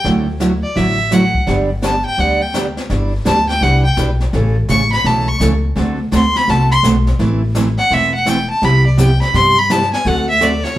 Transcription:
0.04 upright bass D2, steel-string acoustic guitar D3 F#3 A3 E4 F#4, brush sweep, snare
0.40 steel-string acoustic guitar D3 F#3 A3 E4 F#4, snare, hi-hat pedal
0.63 fiddle D5
0.75 upright bass A1, steel-string acoustic guitar D3 F#3 A3 E4 F#4, fiddle E5, brush sweep, snare
1.11 steel-string acoustic guitar D3 F#3 A3 E4 F#4, fiddle F#5, snare, hi-hat pedal
1.34 kick
1.46 upright bass G1, steel-string acoustic guitar D3 G3 B3 D4 G4, brush sweep, snare
1.82 steel-string acoustic guitar D3 G3 B3 D4 G4, fiddle A5, snare, hi-hat pedal
2.05 fiddle G5
2.18 upright bass D2, steel-string acoustic guitar D3 G3 B3 D4 G4, fiddle F#5, brush sweep, snare
2.42 fiddle G5
2.54 steel-string acoustic guitar D3 G3 B3 D4 G4, snare, hi-hat pedal
2.77 snare
2.90 upright bass G1, steel-string acoustic guitar G3 D4 E4 B4, brush sweep, snare
3.25 upright bass D2, steel-string acoustic guitar G3 D4 E4 B4, fiddle A5, snare, hi-hat pedal
3.49 fiddle G5, snare
3.61 upright bass C2, steel-string acoustic guitar G3 D4 E4 B4, fiddle F#5, brush sweep, snare
3.85 fiddle G5
3.97 upright bass B1, steel-string acoustic guitar G3 D4 E4 B4, snare, hi-hat pedal
4.20 snare
4.33 upright bass A1, steel-string acoustic guitar C#3 E3 A3 C#4 A4, brush sweep, snare
4.69 upright bass A1, steel-string acoustic guitar C#3 E3 A3 C#4 A4, fiddle C#6, snare, hi-hat pedal
4.92 fiddle B5, snare
5.04 upright bass B1, steel-string acoustic guitar C#3 E3 A3 C#4 A4, fiddle A5, brush sweep, snare
5.28 fiddle C#6
5.40 upright bass C#2, steel-string acoustic guitar C#3 E3 A3 C#4 A4, snare, hi-hat pedal
5.75 upright bass D2, steel-string acoustic guitar D3 A3 C4 F#4 A4, brush sweep, snare
6.11 upright bass D2, steel-string acoustic guitar D3 A3 C4 F#4 A4, fiddle C6, snare, hi-hat pedal
6.35 fiddle B5, snare
6.48 upright bass C2, steel-string acoustic guitar D3 A3 C4 F#4 A4, fiddle A5, brush sweep, snare
6.71 fiddle C6
6.83 upright bass B1, steel-string acoustic guitar D3 A3 C4 F#4 A4, snare, hi-hat pedal
7.07 snare
7.19 upright bass A1, steel-string acoustic guitar E3 A3 C4 E4 B4, brush sweep, snare
7.55 steel-string acoustic guitar E3 A3 C4 E4 B4, snare, hi-hat pedal
7.78 fiddle F#5, snare
7.90 upright bass E1, steel-string acoustic guitar E3 A3 C4 E4 B4, fiddle E5, brush sweep, snare
8.14 fiddle F#5
8.25 steel-string acoustic guitar E3 A3 C4 E4 B4, fiddle G5, snare, hi-hat pedal
8.50 fiddle A5
8.61 upright bass C2, steel-string acoustic guitar C3 G3 B3 E4 G4, fiddle B5, brush sweep, snare
8.86 fiddle D5
8.97 steel-string acoustic guitar C3 G3 B3 E4 G4, fiddle G5, snare, hi-hat pedal
9.21 fiddle B5, snare
9.33 upright bass G2, steel-string acoustic guitar C3 G3 B3 E4 G4, fiddle C6, brush sweep, snare
9.58 fiddle B5
9.70 steel-string acoustic guitar C3 G3 B3 E4 G4, fiddle A5, snare, hi-hat pedal
9.82 snare
9.93 fiddle G#5, snare
10.05 upright bass D2, steel-string acoustic guitar D3 A3 C4 F#4 A4, fiddle F#5, brush sweep, snare
10.29 fiddle E5
10.40 steel-string acoustic guitar D3 A3 C4 F#4 A4, fiddle D5, snare, hi-hat pedal
10.63 fiddle C#5, snare

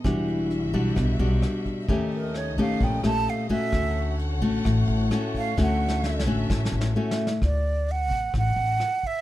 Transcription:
0.04 upright bass E1, nylon-string guitar E3 G3 D4 F#4, string section D4 F#4 E5, kick, cross-stick, closed hi-hat
0.28 closed hi-hat
0.51 closed hi-hat
0.73 upright bass B1, nylon-string guitar G3 D4 F#4, kick, closed hi-hat
0.96 upright bass B1, nylon-string guitar B2, kick, cross-stick, closed hi-hat
1.19 upright bass B1, nylon-string guitar G3 D4 F#4, closed hi-hat
1.42 cross-stick, closed hi-hat
1.66 kick, closed hi-hat
1.88 upright bass D#2, nylon-string guitar D#3 A3 C#4 G4, string section C#4 A4 D#5, kick, closed hi-hat
2.11 flute A#4, closed hi-hat
2.34 flute C#5, cross-stick, closed hi-hat
2.58 upright bass A#1, nylon-string guitar A3 C#4 G4, flute F5, kick, closed hi-hat
2.80 upright bass A#1, nylon-string guitar A#2, flute G5, kick, closed hi-hat
3.04 upright bass A#1, nylon-string guitar A3 C#4 G4, flute A5, cross-stick, closed hi-hat
3.27 flute F5, closed hi-hat
3.49 nylon-string guitar A3 C#4 F#4, flute E5, kick, closed hi-hat
3.72 upright bass D2, nylon-string guitar D3, string section F#4 C#5 F#5, kick, cross-stick, closed hi-hat
3.96 closed hi-hat
4.19 closed hi-hat
4.42 upright bass A1, nylon-string guitar A3 C#4 F#4, kick, closed hi-hat
4.64 upright bass A1, nylon-string guitar A2, kick, cross-stick, closed hi-hat
4.88 upright bass A1, closed hi-hat
5.11 nylon-string guitar A3 C#4 F#4, cross-stick, closed hi-hat
5.34 flute F5, kick, closed hi-hat
5.57 upright bass D2, nylon-string guitar D3 A3 C#4 F#4, string section E5, kick, snare
5.62 flute F#5
5.88 snare
6.04 snare
6.19 snare
6.26 upright bass A1, nylon-string guitar A3 C#4 F#4
6.50 upright bass A1, nylon-string guitar A2, kick, snare
6.65 snare
6.72 upright bass A1
6.81 snare
6.96 nylon-string guitar A3 C#4 F#4
7.11 snare
7.27 snare
7.42 upright bass D2, flute D5, kick, cross-stick, closed hi-hat
7.65 closed hi-hat
7.88 flute F#5, closed hi-hat
8.11 upright bass A1, kick, closed hi-hat
8.34 upright bass A1, kick, cross-stick, closed hi-hat
8.38 flute F#5
8.56 upright bass A1, closed hi-hat
8.80 cross-stick, closed hi-hat
9.03 flute E5, kick, closed hi-hat

